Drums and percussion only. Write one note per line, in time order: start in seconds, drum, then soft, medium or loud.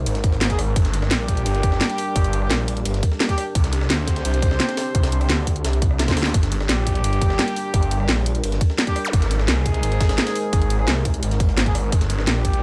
0.06 closed hi-hat medium
0.06 ride medium
0.15 snare soft
0.15 closed hi-hat soft
0.24 kick loud
0.24 closed hi-hat medium
0.24 ride medium
0.32 snare soft
0.41 snare loud
0.41 closed hi-hat medium
0.41 ride medium
0.50 kick medium
0.50 closed hi-hat soft
0.59 cross-stick soft
0.59 open hi-hat medium
0.59 ride medium
0.76 kick loud
0.76 closed hi-hat medium
0.76 ride medium
0.85 snare medium
0.85 closed hi-hat soft
0.94 snare soft
0.94 closed hi-hat medium
0.94 ride medium
1.02 cross-stick soft
1.02 snare medium
1.11 snare loud
1.11 closed hi-hat medium
1.11 ride medium
1.28 kick medium
1.28 closed hi-hat medium
1.28 ride medium
1.37 closed hi-hat soft
1.46 closed hi-hat medium
1.46 ride medium
1.55 closed hi-hat soft
1.63 kick loud
1.63 closed hi-hat medium
1.63 ride medium
1.72 cross-stick soft
1.72 snare medium
1.81 snare loud
1.81 closed hi-hat medium
1.81 ride medium
1.90 closed hi-hat soft
1.98 open hi-hat medium
1.98 ride medium
2.16 kick loud
2.16 closed hi-hat loud
2.16 ride medium
2.24 closed hi-hat soft
2.33 closed hi-hat medium
2.33 ride medium
2.42 cross-stick soft
2.51 snare loud
2.51 closed hi-hat medium
2.51 ride medium
2.68 closed hi-hat medium
2.68 ride medium
2.77 closed hi-hat soft
2.85 closed hi-hat medium
2.85 ride medium
2.94 snare soft
2.94 closed hi-hat soft
3.03 kick loud
3.03 closed hi-hat medium
3.03 ride medium
3.12 snare soft
3.20 snare loud
3.20 closed hi-hat medium
3.20 ride medium
3.29 kick medium
3.29 closed hi-hat soft
3.38 cross-stick soft
3.38 open hi-hat medium
3.38 ride medium
3.55 kick loud
3.55 closed hi-hat loud
3.55 ride medium
3.64 snare medium
3.64 closed hi-hat soft
3.73 snare soft
3.73 closed hi-hat medium
3.73 ride medium
3.81 cross-stick soft
3.81 snare medium
3.90 snare loud
3.90 closed hi-hat loud
3.90 ride medium
4.08 kick medium
4.08 snare soft
4.08 closed hi-hat medium
4.08 ride medium
4.16 snare medium
4.16 closed hi-hat soft
4.25 closed hi-hat loud
4.25 ride medium
4.34 closed hi-hat soft
4.42 kick loud
4.42 closed hi-hat medium
4.42 ride medium
4.51 cross-stick soft
4.51 snare medium
4.60 snare soft
4.60 snare loud
4.60 closed hi-hat loud
4.60 ride medium
4.69 snare soft
4.69 closed hi-hat soft
4.77 snare loud
4.77 open hi-hat medium
4.77 ride medium
4.95 kick loud
4.95 closed hi-hat loud
4.95 ride medium
5.03 snare loud
5.03 closed hi-hat soft
5.03 ride medium
5.12 closed hi-hat medium
5.21 cross-stick soft
5.21 ride medium
5.30 snare loud
5.30 closed hi-hat loud
5.30 ride medium
5.47 kick medium
5.47 closed hi-hat medium
5.47 ride medium
5.56 closed hi-hat soft
5.65 snare loud
5.65 closed hi-hat loud
5.65 ride medium
5.73 closed hi-hat soft
5.82 kick loud
5.82 closed hi-hat medium
5.82 ride medium
5.91 cross-stick soft
5.99 snare loud
5.99 snare medium
5.99 closed hi-hat loud
5.99 ride medium
6.08 kick medium
6.08 snare loud
6.08 closed hi-hat soft
6.08 ride medium
6.11 snare medium
6.17 snare loud
6.17 open hi-hat medium
6.17 ride medium
6.23 snare loud
6.26 snare loud
6.26 ride medium
6.34 kick loud
6.34 closed hi-hat loud
6.34 ride medium
6.43 snare medium
6.43 closed hi-hat soft
6.52 snare soft
6.52 closed hi-hat medium
6.52 ride medium
6.60 cross-stick soft
6.60 snare medium
6.69 snare loud
6.69 closed hi-hat loud
6.69 ride medium
6.87 kick medium
6.87 closed hi-hat medium
6.87 ride medium
6.95 closed hi-hat soft
7.04 closed hi-hat loud
7.04 ride medium
7.13 closed hi-hat soft
7.21 kick loud
7.21 closed hi-hat medium
7.21 ride medium
7.30 cross-stick soft
7.30 snare medium
7.39 snare loud
7.39 closed hi-hat loud
7.39 ride medium
7.48 closed hi-hat soft
7.56 open hi-hat medium
7.56 ride medium
7.74 kick loud
7.74 closed hi-hat loud
7.74 ride medium
7.83 closed hi-hat soft
7.91 closed hi-hat medium
7.91 ride medium
8.00 cross-stick soft
8.09 snare loud
8.09 closed hi-hat medium
8.09 ride medium
8.26 closed hi-hat medium
8.26 ride medium
8.35 closed hi-hat soft
8.44 closed hi-hat medium
8.44 ride medium
8.52 snare soft
8.52 closed hi-hat soft
8.61 kick loud
8.61 closed hi-hat medium
8.61 ride medium
8.70 snare soft
8.78 snare loud
8.78 closed hi-hat loud
8.78 ride medium
8.87 kick medium
8.87 closed hi-hat soft
8.96 cross-stick medium
8.96 open hi-hat medium
8.96 ride medium
9.13 kick loud
9.13 closed hi-hat medium
9.13 ride medium
9.22 snare medium
9.22 closed hi-hat soft
9.31 snare soft
9.31 closed hi-hat medium
9.31 ride medium
9.39 cross-stick soft
9.39 snare medium
9.48 snare loud
9.48 closed hi-hat medium
9.48 ride medium
9.66 kick medium
9.66 closed hi-hat medium
9.66 ride medium
9.74 closed hi-hat soft
9.83 closed hi-hat medium
9.83 ride medium
9.92 closed hi-hat soft
10.01 kick loud
10.01 snare loud
10.01 closed hi-hat medium
10.01 ride medium
10.09 cross-stick soft
10.09 snare loud
10.09 ride medium
10.18 snare loud
10.18 closed hi-hat loud
10.18 ride medium
10.27 snare loud
10.27 closed hi-hat soft
10.27 ride medium
10.35 open hi-hat medium
10.35 ride medium
10.53 kick loud
10.53 closed hi-hat medium
10.53 ride medium
10.62 closed hi-hat soft
10.70 closed hi-hat medium
10.70 ride medium
10.79 cross-stick soft
10.88 snare loud
10.88 closed hi-hat medium
10.88 ride medium
11.05 kick medium
11.05 closed hi-hat medium
11.05 ride medium
11.14 closed hi-hat soft
11.23 closed hi-hat medium
11.23 ride medium
11.31 snare soft
11.31 closed hi-hat soft
11.40 kick loud
11.40 closed hi-hat medium
11.40 ride medium
11.49 snare soft
11.57 snare loud
11.57 closed hi-hat medium
11.57 ride medium
11.66 kick medium
11.66 closed hi-hat soft
11.75 cross-stick soft
11.75 open hi-hat medium
11.75 ride medium
11.92 kick loud
11.92 closed hi-hat loud
11.92 ride medium
12.01 snare medium
12.01 closed hi-hat soft
12.10 snare soft
12.10 closed hi-hat medium
12.10 ride medium
12.19 cross-stick soft
12.19 snare medium
12.27 snare loud
12.27 closed hi-hat medium
12.27 ride medium
12.45 kick medium
12.45 closed hi-hat medium
12.45 ride medium
12.53 closed hi-hat soft